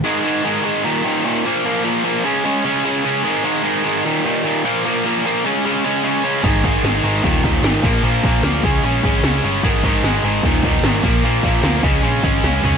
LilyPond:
<<
  \new Staff \with { instrumentName = "Distorted electric guitar" } { \clef bass \time 4/4 \key aes \lydian \tempo 4 = 150 <aes, ees aes>8 <aes, ees aes>8 <aes, ees aes>8 <aes, ees aes>8 <ees, bes, ees>8 <ees, bes, ees>8 <ees, bes, ees>8 <bes, f bes>8 | <bes, f bes>8 <bes, f bes>8 <bes, f bes>8 <des aes des'>8 <des aes des'>8 <des aes des'>8 <des aes des'>8 <des aes des'>8 | <aes, ees aes>8 <aes, ees aes>8 <aes, ees aes>8 <aes, ees aes>8 <ees, bes, ees>8 <ees, bes, ees>8 <ees, bes, ees>8 <bes, f bes>8 | <bes, f bes>8 <bes, f bes>8 <bes, f bes>8 <des aes des'>8 <des aes des'>8 <des aes des'>8 <des aes des'>8 <des aes des'>8 |
<aes, ees aes>8 <aes, ees aes>8 <aes, ees aes>8 <aes, ees aes>8 <ees, bes, ees>8 <ees, bes, ees>8 <ees, bes, ees>8 <bes, f bes>8 | <bes, f bes>8 <bes, f bes>8 <bes, f bes>8 <des aes des'>8 <des aes des'>8 <des aes des'>8 <des aes des'>8 <des aes des'>8 | <aes, ees aes>8 <aes, ees aes>8 <aes, ees aes>8 <aes, ees aes>8 <ees, bes, ees>8 <ees, bes, ees>8 <ees, bes, ees>8 <bes, f bes>8 | <bes, f bes>8 <bes, f bes>8 <bes, f bes>8 <des aes des'>8 <des aes des'>8 <des aes des'>8 <des aes des'>8 <des aes des'>8 | }
  \new Staff \with { instrumentName = "Picked electric bass" } { \clef bass \time 4/4 \key aes \lydian r1 | r1 | r1 | r1 |
aes,,4 aes,,8 aes,,8 ees,,8 ees,,8 aes,,8 bes,,8 | bes,,8 bes,,8 d,8 des,8 bes,,8 aes,,8 des,8 g,,8 | aes,,4 aes,,8 aes,,8 ees,,8 ees,,8 aes,,8 bes,,8 | bes,,8 bes,,8 d,8 des,8 bes,,8 aes,,8 des,8 des,8 | }
  \new DrumStaff \with { instrumentName = "Drums" } \drummode { \time 4/4 r4 r4 r4 r4 | r4 r4 r4 r4 | r4 r4 r4 r4 | r4 r4 r4 r4 |
<cymc bd>8 bd8 <cymc sn>4 <cymc bd>8 bd8 <cymc sn>8 bd8 | cymc8 bd8 <cymc sn>8 bd8 cymc8 bd8 <cymc sn>4 | <cymc bd>8 bd8 <cymc sn>4 <cymc bd>8 bd8 <cymc sn>8 bd8 | cymc8 bd8 <cymc sn>8 bd8 cymc8 bd8 sn8 tomfh8 | }
>>